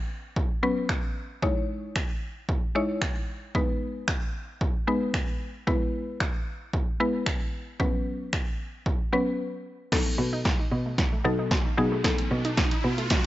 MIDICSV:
0, 0, Header, 1, 6, 480
1, 0, Start_track
1, 0, Tempo, 530973
1, 1289, Time_signature, 4, 2, 24, 8
1, 11987, End_track
2, 0, Start_track
2, 0, Title_t, "Synth pluck"
2, 0, Program_c, 0, 84
2, 567, Note_on_c, 0, 54, 91
2, 568, Note_on_c, 0, 59, 83
2, 569, Note_on_c, 0, 61, 79
2, 570, Note_on_c, 0, 71, 98
2, 956, Note_off_c, 0, 54, 0
2, 957, Note_off_c, 0, 59, 0
2, 957, Note_off_c, 0, 61, 0
2, 958, Note_off_c, 0, 71, 0
2, 1287, Note_on_c, 0, 56, 88
2, 1288, Note_on_c, 0, 63, 85
2, 1290, Note_on_c, 0, 64, 81
2, 1291, Note_on_c, 0, 73, 98
2, 1800, Note_off_c, 0, 56, 0
2, 1800, Note_off_c, 0, 63, 0
2, 1801, Note_off_c, 0, 64, 0
2, 1802, Note_off_c, 0, 73, 0
2, 2486, Note_on_c, 0, 56, 83
2, 2489, Note_on_c, 0, 63, 82
2, 2490, Note_on_c, 0, 64, 78
2, 2492, Note_on_c, 0, 73, 95
2, 2876, Note_off_c, 0, 56, 0
2, 2877, Note_off_c, 0, 63, 0
2, 2878, Note_off_c, 0, 64, 0
2, 2879, Note_off_c, 0, 73, 0
2, 3207, Note_on_c, 0, 56, 93
2, 3209, Note_on_c, 0, 59, 81
2, 3210, Note_on_c, 0, 63, 81
2, 3212, Note_on_c, 0, 71, 101
2, 3720, Note_off_c, 0, 56, 0
2, 3721, Note_off_c, 0, 59, 0
2, 3721, Note_off_c, 0, 63, 0
2, 3722, Note_off_c, 0, 71, 0
2, 4406, Note_on_c, 0, 56, 88
2, 4407, Note_on_c, 0, 59, 81
2, 4409, Note_on_c, 0, 63, 80
2, 4410, Note_on_c, 0, 71, 95
2, 4796, Note_off_c, 0, 56, 0
2, 4796, Note_off_c, 0, 59, 0
2, 4797, Note_off_c, 0, 63, 0
2, 4798, Note_off_c, 0, 71, 0
2, 5126, Note_on_c, 0, 56, 90
2, 5127, Note_on_c, 0, 59, 80
2, 5130, Note_on_c, 0, 64, 84
2, 5130, Note_on_c, 0, 71, 99
2, 5639, Note_off_c, 0, 56, 0
2, 5640, Note_off_c, 0, 59, 0
2, 5641, Note_off_c, 0, 64, 0
2, 5641, Note_off_c, 0, 71, 0
2, 6328, Note_on_c, 0, 56, 87
2, 6329, Note_on_c, 0, 59, 82
2, 6330, Note_on_c, 0, 64, 83
2, 6332, Note_on_c, 0, 71, 99
2, 6717, Note_off_c, 0, 56, 0
2, 6717, Note_off_c, 0, 59, 0
2, 6718, Note_off_c, 0, 64, 0
2, 6719, Note_off_c, 0, 71, 0
2, 7048, Note_on_c, 0, 54, 87
2, 7049, Note_on_c, 0, 59, 79
2, 7051, Note_on_c, 0, 61, 83
2, 7053, Note_on_c, 0, 71, 100
2, 7560, Note_off_c, 0, 54, 0
2, 7561, Note_off_c, 0, 59, 0
2, 7561, Note_off_c, 0, 61, 0
2, 7563, Note_off_c, 0, 71, 0
2, 8249, Note_on_c, 0, 54, 84
2, 8251, Note_on_c, 0, 59, 79
2, 8251, Note_on_c, 0, 61, 78
2, 8255, Note_on_c, 0, 71, 95
2, 8637, Note_off_c, 0, 54, 0
2, 8638, Note_off_c, 0, 59, 0
2, 8638, Note_off_c, 0, 61, 0
2, 8640, Note_off_c, 0, 71, 0
2, 8968, Note_on_c, 0, 54, 88
2, 8970, Note_on_c, 0, 59, 77
2, 8970, Note_on_c, 0, 63, 77
2, 8973, Note_on_c, 0, 69, 96
2, 9480, Note_off_c, 0, 54, 0
2, 9481, Note_off_c, 0, 59, 0
2, 9481, Note_off_c, 0, 63, 0
2, 9483, Note_off_c, 0, 69, 0
2, 10164, Note_on_c, 0, 54, 81
2, 10167, Note_on_c, 0, 59, 74
2, 10168, Note_on_c, 0, 63, 74
2, 10171, Note_on_c, 0, 69, 87
2, 10422, Note_off_c, 0, 54, 0
2, 10424, Note_off_c, 0, 59, 0
2, 10424, Note_off_c, 0, 63, 0
2, 10426, Note_off_c, 0, 69, 0
2, 10644, Note_on_c, 0, 54, 87
2, 10646, Note_on_c, 0, 59, 77
2, 10648, Note_on_c, 0, 63, 78
2, 10650, Note_on_c, 0, 68, 92
2, 10781, Note_off_c, 0, 54, 0
2, 10782, Note_off_c, 0, 59, 0
2, 10783, Note_off_c, 0, 63, 0
2, 10783, Note_off_c, 0, 68, 0
2, 10886, Note_on_c, 0, 54, 83
2, 10888, Note_on_c, 0, 59, 79
2, 10889, Note_on_c, 0, 63, 78
2, 10891, Note_on_c, 0, 69, 95
2, 11399, Note_off_c, 0, 54, 0
2, 11400, Note_off_c, 0, 59, 0
2, 11401, Note_off_c, 0, 63, 0
2, 11402, Note_off_c, 0, 69, 0
2, 11987, End_track
3, 0, Start_track
3, 0, Title_t, "Synth arpeggio sound"
3, 0, Program_c, 1, 84
3, 8968, Note_on_c, 1, 54, 88
3, 9054, Note_off_c, 1, 54, 0
3, 9097, Note_on_c, 1, 57, 73
3, 9172, Note_off_c, 1, 57, 0
3, 9210, Note_on_c, 1, 59, 79
3, 9294, Note_off_c, 1, 59, 0
3, 9337, Note_on_c, 1, 63, 91
3, 9412, Note_off_c, 1, 63, 0
3, 9450, Note_on_c, 1, 66, 84
3, 9534, Note_off_c, 1, 66, 0
3, 9577, Note_on_c, 1, 63, 74
3, 9652, Note_off_c, 1, 63, 0
3, 9688, Note_on_c, 1, 59, 92
3, 9773, Note_off_c, 1, 59, 0
3, 9817, Note_on_c, 1, 57, 76
3, 9892, Note_off_c, 1, 57, 0
3, 9930, Note_on_c, 1, 54, 72
3, 10015, Note_off_c, 1, 54, 0
3, 10058, Note_on_c, 1, 57, 83
3, 10133, Note_off_c, 1, 57, 0
3, 10169, Note_on_c, 1, 59, 74
3, 10254, Note_off_c, 1, 59, 0
3, 10296, Note_on_c, 1, 63, 78
3, 10371, Note_off_c, 1, 63, 0
3, 10409, Note_on_c, 1, 66, 98
3, 10494, Note_off_c, 1, 66, 0
3, 10536, Note_on_c, 1, 63, 81
3, 10611, Note_off_c, 1, 63, 0
3, 10774, Note_on_c, 1, 57, 93
3, 10850, Note_off_c, 1, 57, 0
3, 10887, Note_on_c, 1, 54, 90
3, 10972, Note_off_c, 1, 54, 0
3, 11014, Note_on_c, 1, 57, 75
3, 11090, Note_off_c, 1, 57, 0
3, 11127, Note_on_c, 1, 59, 81
3, 11213, Note_off_c, 1, 59, 0
3, 11254, Note_on_c, 1, 63, 99
3, 11330, Note_off_c, 1, 63, 0
3, 11368, Note_on_c, 1, 66, 87
3, 11453, Note_off_c, 1, 66, 0
3, 11495, Note_on_c, 1, 63, 77
3, 11570, Note_off_c, 1, 63, 0
3, 11608, Note_on_c, 1, 59, 93
3, 11693, Note_off_c, 1, 59, 0
3, 11733, Note_on_c, 1, 57, 79
3, 11809, Note_off_c, 1, 57, 0
3, 11846, Note_on_c, 1, 54, 72
3, 11932, Note_off_c, 1, 54, 0
3, 11987, End_track
4, 0, Start_track
4, 0, Title_t, "Cello"
4, 0, Program_c, 2, 42
4, 9209, Note_on_c, 2, 47, 83
4, 9535, Note_off_c, 2, 47, 0
4, 9688, Note_on_c, 2, 47, 82
4, 10014, Note_off_c, 2, 47, 0
4, 10168, Note_on_c, 2, 47, 88
4, 10494, Note_off_c, 2, 47, 0
4, 10648, Note_on_c, 2, 47, 81
4, 10974, Note_off_c, 2, 47, 0
4, 11128, Note_on_c, 2, 47, 88
4, 11454, Note_off_c, 2, 47, 0
4, 11609, Note_on_c, 2, 47, 85
4, 11934, Note_off_c, 2, 47, 0
4, 11987, End_track
5, 0, Start_track
5, 0, Title_t, "Riser"
5, 0, Program_c, 3, 103
5, 8967, Note_on_c, 3, 60, 83
5, 11987, Note_off_c, 3, 60, 0
5, 11987, End_track
6, 0, Start_track
6, 0, Title_t, "Drums"
6, 329, Note_on_c, 9, 36, 109
6, 419, Note_off_c, 9, 36, 0
6, 806, Note_on_c, 9, 26, 102
6, 807, Note_on_c, 9, 36, 113
6, 896, Note_off_c, 9, 26, 0
6, 897, Note_off_c, 9, 36, 0
6, 1288, Note_on_c, 9, 36, 106
6, 1379, Note_off_c, 9, 36, 0
6, 1769, Note_on_c, 9, 26, 107
6, 1770, Note_on_c, 9, 36, 112
6, 1859, Note_off_c, 9, 26, 0
6, 1860, Note_off_c, 9, 36, 0
6, 2248, Note_on_c, 9, 36, 110
6, 2339, Note_off_c, 9, 36, 0
6, 2726, Note_on_c, 9, 26, 105
6, 2726, Note_on_c, 9, 36, 111
6, 2816, Note_off_c, 9, 36, 0
6, 2817, Note_off_c, 9, 26, 0
6, 3208, Note_on_c, 9, 36, 105
6, 3298, Note_off_c, 9, 36, 0
6, 3686, Note_on_c, 9, 26, 104
6, 3689, Note_on_c, 9, 36, 110
6, 3777, Note_off_c, 9, 26, 0
6, 3779, Note_off_c, 9, 36, 0
6, 4168, Note_on_c, 9, 36, 111
6, 4258, Note_off_c, 9, 36, 0
6, 4646, Note_on_c, 9, 36, 119
6, 4647, Note_on_c, 9, 26, 107
6, 4737, Note_off_c, 9, 26, 0
6, 4737, Note_off_c, 9, 36, 0
6, 5129, Note_on_c, 9, 36, 105
6, 5219, Note_off_c, 9, 36, 0
6, 5608, Note_on_c, 9, 26, 102
6, 5609, Note_on_c, 9, 36, 111
6, 5699, Note_off_c, 9, 26, 0
6, 5700, Note_off_c, 9, 36, 0
6, 6088, Note_on_c, 9, 36, 104
6, 6178, Note_off_c, 9, 36, 0
6, 6566, Note_on_c, 9, 36, 117
6, 6567, Note_on_c, 9, 26, 104
6, 6657, Note_off_c, 9, 26, 0
6, 6657, Note_off_c, 9, 36, 0
6, 7049, Note_on_c, 9, 36, 101
6, 7140, Note_off_c, 9, 36, 0
6, 7530, Note_on_c, 9, 26, 104
6, 7531, Note_on_c, 9, 36, 113
6, 7620, Note_off_c, 9, 26, 0
6, 7621, Note_off_c, 9, 36, 0
6, 8010, Note_on_c, 9, 36, 108
6, 8100, Note_off_c, 9, 36, 0
6, 8969, Note_on_c, 9, 36, 102
6, 8969, Note_on_c, 9, 38, 50
6, 8969, Note_on_c, 9, 49, 87
6, 9059, Note_off_c, 9, 36, 0
6, 9059, Note_off_c, 9, 38, 0
6, 9059, Note_off_c, 9, 49, 0
6, 9448, Note_on_c, 9, 38, 54
6, 9449, Note_on_c, 9, 36, 113
6, 9538, Note_off_c, 9, 38, 0
6, 9540, Note_off_c, 9, 36, 0
6, 9928, Note_on_c, 9, 36, 109
6, 9928, Note_on_c, 9, 38, 60
6, 10018, Note_off_c, 9, 36, 0
6, 10019, Note_off_c, 9, 38, 0
6, 10406, Note_on_c, 9, 36, 122
6, 10408, Note_on_c, 9, 38, 67
6, 10496, Note_off_c, 9, 36, 0
6, 10498, Note_off_c, 9, 38, 0
6, 10887, Note_on_c, 9, 36, 104
6, 10888, Note_on_c, 9, 38, 68
6, 10888, Note_on_c, 9, 42, 77
6, 10978, Note_off_c, 9, 36, 0
6, 10978, Note_off_c, 9, 38, 0
6, 10978, Note_off_c, 9, 42, 0
6, 11015, Note_on_c, 9, 42, 58
6, 11105, Note_off_c, 9, 42, 0
6, 11252, Note_on_c, 9, 42, 54
6, 11343, Note_off_c, 9, 42, 0
6, 11367, Note_on_c, 9, 38, 71
6, 11368, Note_on_c, 9, 36, 118
6, 11368, Note_on_c, 9, 42, 67
6, 11457, Note_off_c, 9, 38, 0
6, 11458, Note_off_c, 9, 42, 0
6, 11459, Note_off_c, 9, 36, 0
6, 11493, Note_on_c, 9, 42, 52
6, 11584, Note_off_c, 9, 42, 0
6, 11735, Note_on_c, 9, 42, 50
6, 11825, Note_off_c, 9, 42, 0
6, 11843, Note_on_c, 9, 42, 84
6, 11846, Note_on_c, 9, 38, 73
6, 11847, Note_on_c, 9, 36, 113
6, 11934, Note_off_c, 9, 42, 0
6, 11936, Note_off_c, 9, 38, 0
6, 11937, Note_off_c, 9, 36, 0
6, 11987, End_track
0, 0, End_of_file